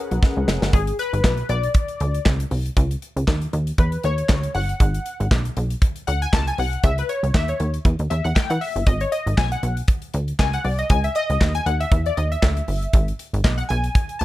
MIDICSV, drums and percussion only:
0, 0, Header, 1, 2, 480
1, 0, Start_track
1, 0, Tempo, 508475
1, 694, Time_signature, 4, 2, 24, 8
1, 13451, End_track
2, 0, Start_track
2, 0, Title_t, "Drums"
2, 108, Note_on_c, 9, 42, 50
2, 202, Note_off_c, 9, 42, 0
2, 213, Note_on_c, 9, 36, 117
2, 217, Note_on_c, 9, 38, 60
2, 308, Note_off_c, 9, 36, 0
2, 312, Note_off_c, 9, 38, 0
2, 453, Note_on_c, 9, 38, 102
2, 547, Note_off_c, 9, 38, 0
2, 588, Note_on_c, 9, 38, 102
2, 683, Note_off_c, 9, 38, 0
2, 691, Note_on_c, 9, 42, 90
2, 692, Note_on_c, 9, 36, 113
2, 785, Note_off_c, 9, 42, 0
2, 786, Note_off_c, 9, 36, 0
2, 824, Note_on_c, 9, 42, 57
2, 919, Note_off_c, 9, 42, 0
2, 934, Note_on_c, 9, 42, 62
2, 1028, Note_off_c, 9, 42, 0
2, 1071, Note_on_c, 9, 42, 54
2, 1166, Note_off_c, 9, 42, 0
2, 1171, Note_on_c, 9, 36, 104
2, 1172, Note_on_c, 9, 38, 105
2, 1178, Note_on_c, 9, 39, 83
2, 1265, Note_off_c, 9, 36, 0
2, 1266, Note_off_c, 9, 38, 0
2, 1273, Note_off_c, 9, 39, 0
2, 1297, Note_on_c, 9, 42, 52
2, 1392, Note_off_c, 9, 42, 0
2, 1408, Note_on_c, 9, 42, 71
2, 1503, Note_off_c, 9, 42, 0
2, 1542, Note_on_c, 9, 42, 55
2, 1637, Note_off_c, 9, 42, 0
2, 1645, Note_on_c, 9, 42, 85
2, 1649, Note_on_c, 9, 36, 112
2, 1740, Note_off_c, 9, 42, 0
2, 1743, Note_off_c, 9, 36, 0
2, 1778, Note_on_c, 9, 42, 46
2, 1872, Note_off_c, 9, 42, 0
2, 1891, Note_on_c, 9, 42, 70
2, 1986, Note_off_c, 9, 42, 0
2, 2024, Note_on_c, 9, 42, 47
2, 2119, Note_off_c, 9, 42, 0
2, 2128, Note_on_c, 9, 38, 107
2, 2132, Note_on_c, 9, 36, 108
2, 2135, Note_on_c, 9, 39, 88
2, 2223, Note_off_c, 9, 38, 0
2, 2226, Note_off_c, 9, 36, 0
2, 2229, Note_off_c, 9, 39, 0
2, 2265, Note_on_c, 9, 42, 61
2, 2360, Note_off_c, 9, 42, 0
2, 2370, Note_on_c, 9, 46, 76
2, 2465, Note_off_c, 9, 46, 0
2, 2508, Note_on_c, 9, 42, 54
2, 2602, Note_off_c, 9, 42, 0
2, 2611, Note_on_c, 9, 42, 87
2, 2612, Note_on_c, 9, 36, 104
2, 2706, Note_off_c, 9, 42, 0
2, 2707, Note_off_c, 9, 36, 0
2, 2746, Note_on_c, 9, 42, 54
2, 2841, Note_off_c, 9, 42, 0
2, 2853, Note_on_c, 9, 42, 61
2, 2947, Note_off_c, 9, 42, 0
2, 2990, Note_on_c, 9, 42, 52
2, 3085, Note_off_c, 9, 42, 0
2, 3092, Note_on_c, 9, 36, 108
2, 3092, Note_on_c, 9, 38, 105
2, 3099, Note_on_c, 9, 39, 89
2, 3187, Note_off_c, 9, 36, 0
2, 3187, Note_off_c, 9, 38, 0
2, 3193, Note_off_c, 9, 39, 0
2, 3225, Note_on_c, 9, 42, 53
2, 3319, Note_off_c, 9, 42, 0
2, 3334, Note_on_c, 9, 42, 71
2, 3428, Note_off_c, 9, 42, 0
2, 3465, Note_on_c, 9, 42, 62
2, 3559, Note_off_c, 9, 42, 0
2, 3570, Note_on_c, 9, 42, 81
2, 3571, Note_on_c, 9, 36, 112
2, 3664, Note_off_c, 9, 42, 0
2, 3666, Note_off_c, 9, 36, 0
2, 3701, Note_on_c, 9, 42, 51
2, 3796, Note_off_c, 9, 42, 0
2, 3809, Note_on_c, 9, 42, 80
2, 3904, Note_off_c, 9, 42, 0
2, 3945, Note_on_c, 9, 42, 51
2, 4040, Note_off_c, 9, 42, 0
2, 4048, Note_on_c, 9, 38, 117
2, 4052, Note_on_c, 9, 36, 115
2, 4054, Note_on_c, 9, 39, 90
2, 4142, Note_off_c, 9, 38, 0
2, 4147, Note_off_c, 9, 36, 0
2, 4149, Note_off_c, 9, 39, 0
2, 4186, Note_on_c, 9, 42, 62
2, 4280, Note_off_c, 9, 42, 0
2, 4291, Note_on_c, 9, 46, 75
2, 4385, Note_off_c, 9, 46, 0
2, 4429, Note_on_c, 9, 42, 53
2, 4523, Note_off_c, 9, 42, 0
2, 4532, Note_on_c, 9, 42, 95
2, 4533, Note_on_c, 9, 36, 112
2, 4626, Note_off_c, 9, 42, 0
2, 4627, Note_off_c, 9, 36, 0
2, 4668, Note_on_c, 9, 42, 55
2, 4762, Note_off_c, 9, 42, 0
2, 4774, Note_on_c, 9, 42, 67
2, 4868, Note_off_c, 9, 42, 0
2, 4912, Note_on_c, 9, 42, 53
2, 5007, Note_off_c, 9, 42, 0
2, 5014, Note_on_c, 9, 36, 113
2, 5017, Note_on_c, 9, 38, 113
2, 5023, Note_on_c, 9, 39, 90
2, 5108, Note_off_c, 9, 36, 0
2, 5111, Note_off_c, 9, 38, 0
2, 5118, Note_off_c, 9, 39, 0
2, 5148, Note_on_c, 9, 42, 53
2, 5242, Note_off_c, 9, 42, 0
2, 5255, Note_on_c, 9, 42, 79
2, 5349, Note_off_c, 9, 42, 0
2, 5385, Note_on_c, 9, 42, 57
2, 5479, Note_off_c, 9, 42, 0
2, 5492, Note_on_c, 9, 36, 114
2, 5492, Note_on_c, 9, 42, 88
2, 5586, Note_off_c, 9, 42, 0
2, 5587, Note_off_c, 9, 36, 0
2, 5623, Note_on_c, 9, 42, 51
2, 5717, Note_off_c, 9, 42, 0
2, 5735, Note_on_c, 9, 42, 78
2, 5829, Note_off_c, 9, 42, 0
2, 5871, Note_on_c, 9, 42, 52
2, 5966, Note_off_c, 9, 42, 0
2, 5975, Note_on_c, 9, 36, 113
2, 5976, Note_on_c, 9, 38, 112
2, 5983, Note_on_c, 9, 39, 96
2, 6070, Note_off_c, 9, 36, 0
2, 6070, Note_off_c, 9, 38, 0
2, 6077, Note_off_c, 9, 39, 0
2, 6111, Note_on_c, 9, 42, 61
2, 6205, Note_off_c, 9, 42, 0
2, 6214, Note_on_c, 9, 46, 77
2, 6308, Note_off_c, 9, 46, 0
2, 6352, Note_on_c, 9, 42, 55
2, 6446, Note_off_c, 9, 42, 0
2, 6452, Note_on_c, 9, 42, 92
2, 6453, Note_on_c, 9, 36, 106
2, 6546, Note_off_c, 9, 42, 0
2, 6548, Note_off_c, 9, 36, 0
2, 6589, Note_on_c, 9, 42, 56
2, 6683, Note_off_c, 9, 42, 0
2, 6694, Note_on_c, 9, 42, 64
2, 6788, Note_off_c, 9, 42, 0
2, 6831, Note_on_c, 9, 42, 49
2, 6925, Note_off_c, 9, 42, 0
2, 6933, Note_on_c, 9, 36, 117
2, 6933, Note_on_c, 9, 38, 107
2, 6940, Note_on_c, 9, 39, 82
2, 7027, Note_off_c, 9, 36, 0
2, 7028, Note_off_c, 9, 38, 0
2, 7034, Note_off_c, 9, 39, 0
2, 7063, Note_on_c, 9, 42, 53
2, 7157, Note_off_c, 9, 42, 0
2, 7172, Note_on_c, 9, 42, 73
2, 7267, Note_off_c, 9, 42, 0
2, 7304, Note_on_c, 9, 42, 60
2, 7399, Note_off_c, 9, 42, 0
2, 7410, Note_on_c, 9, 36, 110
2, 7410, Note_on_c, 9, 42, 81
2, 7505, Note_off_c, 9, 36, 0
2, 7505, Note_off_c, 9, 42, 0
2, 7542, Note_on_c, 9, 42, 48
2, 7637, Note_off_c, 9, 42, 0
2, 7652, Note_on_c, 9, 42, 76
2, 7746, Note_off_c, 9, 42, 0
2, 7789, Note_on_c, 9, 42, 50
2, 7884, Note_off_c, 9, 42, 0
2, 7893, Note_on_c, 9, 36, 105
2, 7895, Note_on_c, 9, 38, 112
2, 7901, Note_on_c, 9, 39, 96
2, 7988, Note_off_c, 9, 36, 0
2, 7989, Note_off_c, 9, 38, 0
2, 7996, Note_off_c, 9, 39, 0
2, 8027, Note_on_c, 9, 42, 64
2, 8121, Note_off_c, 9, 42, 0
2, 8132, Note_on_c, 9, 46, 81
2, 8226, Note_off_c, 9, 46, 0
2, 8272, Note_on_c, 9, 42, 55
2, 8366, Note_off_c, 9, 42, 0
2, 8368, Note_on_c, 9, 42, 91
2, 8370, Note_on_c, 9, 36, 112
2, 8462, Note_off_c, 9, 42, 0
2, 8465, Note_off_c, 9, 36, 0
2, 8501, Note_on_c, 9, 42, 54
2, 8595, Note_off_c, 9, 42, 0
2, 8611, Note_on_c, 9, 42, 69
2, 8705, Note_off_c, 9, 42, 0
2, 8750, Note_on_c, 9, 42, 51
2, 8845, Note_off_c, 9, 42, 0
2, 8850, Note_on_c, 9, 36, 112
2, 8852, Note_on_c, 9, 38, 105
2, 8858, Note_on_c, 9, 39, 85
2, 8945, Note_off_c, 9, 36, 0
2, 8946, Note_off_c, 9, 38, 0
2, 8952, Note_off_c, 9, 39, 0
2, 8984, Note_on_c, 9, 42, 55
2, 9078, Note_off_c, 9, 42, 0
2, 9091, Note_on_c, 9, 42, 68
2, 9185, Note_off_c, 9, 42, 0
2, 9222, Note_on_c, 9, 42, 60
2, 9316, Note_off_c, 9, 42, 0
2, 9324, Note_on_c, 9, 42, 86
2, 9328, Note_on_c, 9, 36, 114
2, 9418, Note_off_c, 9, 42, 0
2, 9422, Note_off_c, 9, 36, 0
2, 9457, Note_on_c, 9, 42, 45
2, 9551, Note_off_c, 9, 42, 0
2, 9568, Note_on_c, 9, 42, 77
2, 9663, Note_off_c, 9, 42, 0
2, 9703, Note_on_c, 9, 42, 50
2, 9798, Note_off_c, 9, 42, 0
2, 9810, Note_on_c, 9, 38, 116
2, 9811, Note_on_c, 9, 36, 117
2, 9817, Note_on_c, 9, 39, 93
2, 9905, Note_off_c, 9, 36, 0
2, 9905, Note_off_c, 9, 38, 0
2, 9911, Note_off_c, 9, 39, 0
2, 9944, Note_on_c, 9, 42, 62
2, 10038, Note_off_c, 9, 42, 0
2, 10047, Note_on_c, 9, 46, 73
2, 10142, Note_off_c, 9, 46, 0
2, 10181, Note_on_c, 9, 42, 57
2, 10276, Note_off_c, 9, 42, 0
2, 10286, Note_on_c, 9, 42, 92
2, 10289, Note_on_c, 9, 36, 115
2, 10380, Note_off_c, 9, 42, 0
2, 10384, Note_off_c, 9, 36, 0
2, 10421, Note_on_c, 9, 42, 57
2, 10515, Note_off_c, 9, 42, 0
2, 10526, Note_on_c, 9, 42, 65
2, 10621, Note_off_c, 9, 42, 0
2, 10666, Note_on_c, 9, 42, 54
2, 10760, Note_off_c, 9, 42, 0
2, 10770, Note_on_c, 9, 36, 109
2, 10771, Note_on_c, 9, 38, 116
2, 10777, Note_on_c, 9, 39, 89
2, 10865, Note_off_c, 9, 36, 0
2, 10865, Note_off_c, 9, 38, 0
2, 10872, Note_off_c, 9, 39, 0
2, 10900, Note_on_c, 9, 42, 56
2, 10994, Note_off_c, 9, 42, 0
2, 11011, Note_on_c, 9, 42, 80
2, 11106, Note_off_c, 9, 42, 0
2, 11144, Note_on_c, 9, 42, 59
2, 11239, Note_off_c, 9, 42, 0
2, 11248, Note_on_c, 9, 42, 86
2, 11249, Note_on_c, 9, 36, 123
2, 11343, Note_off_c, 9, 36, 0
2, 11343, Note_off_c, 9, 42, 0
2, 11383, Note_on_c, 9, 42, 47
2, 11477, Note_off_c, 9, 42, 0
2, 11492, Note_on_c, 9, 42, 74
2, 11586, Note_off_c, 9, 42, 0
2, 11628, Note_on_c, 9, 42, 48
2, 11723, Note_off_c, 9, 42, 0
2, 11730, Note_on_c, 9, 38, 116
2, 11731, Note_on_c, 9, 36, 120
2, 11736, Note_on_c, 9, 39, 96
2, 11824, Note_off_c, 9, 38, 0
2, 11825, Note_off_c, 9, 36, 0
2, 11831, Note_off_c, 9, 39, 0
2, 11864, Note_on_c, 9, 42, 56
2, 11958, Note_off_c, 9, 42, 0
2, 11969, Note_on_c, 9, 46, 78
2, 12063, Note_off_c, 9, 46, 0
2, 12106, Note_on_c, 9, 42, 52
2, 12201, Note_off_c, 9, 42, 0
2, 12209, Note_on_c, 9, 42, 90
2, 12211, Note_on_c, 9, 36, 114
2, 12303, Note_off_c, 9, 42, 0
2, 12305, Note_off_c, 9, 36, 0
2, 12348, Note_on_c, 9, 42, 52
2, 12443, Note_off_c, 9, 42, 0
2, 12454, Note_on_c, 9, 42, 70
2, 12549, Note_off_c, 9, 42, 0
2, 12591, Note_on_c, 9, 42, 54
2, 12686, Note_off_c, 9, 42, 0
2, 12691, Note_on_c, 9, 36, 120
2, 12692, Note_on_c, 9, 38, 109
2, 12699, Note_on_c, 9, 39, 89
2, 12785, Note_off_c, 9, 36, 0
2, 12786, Note_off_c, 9, 38, 0
2, 12793, Note_off_c, 9, 39, 0
2, 12823, Note_on_c, 9, 42, 58
2, 12918, Note_off_c, 9, 42, 0
2, 12934, Note_on_c, 9, 42, 74
2, 13028, Note_off_c, 9, 42, 0
2, 13062, Note_on_c, 9, 42, 59
2, 13157, Note_off_c, 9, 42, 0
2, 13169, Note_on_c, 9, 42, 85
2, 13170, Note_on_c, 9, 36, 117
2, 13263, Note_off_c, 9, 42, 0
2, 13264, Note_off_c, 9, 36, 0
2, 13302, Note_on_c, 9, 42, 49
2, 13396, Note_off_c, 9, 42, 0
2, 13412, Note_on_c, 9, 42, 82
2, 13451, Note_off_c, 9, 42, 0
2, 13451, End_track
0, 0, End_of_file